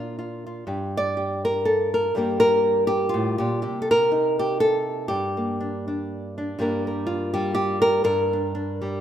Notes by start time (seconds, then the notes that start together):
Already playing: A#2 D4 F4 A#4
0.19 F4
0.47 F4
0.67 G2 G4
0.97 D5
1.17 G4
1.45 A#4
1.65 A4
1.94 A#4
2.15 G2 G3 A#3 G4 A#4
2.40 A#4
2.87 G4
3.09 F4
3.14 A2
3.38 A#2 G4
3.62 C3 G4
3.82 A4
3.91 A#4
4.11 D#4
4.39 G4
4.60 A4
5.08 G2 G4
5.37 A#3
5.61 D4
5.88 D4
6.38 D4
6.59 G2 G3 A#3 D4 A#4
6.87 A#4
7.07 F4
7.34 G3 G4
7.55 G4
7.82 A#4
8.04 G2 A#4
8.33 D4
8.55 D4
8.82 G3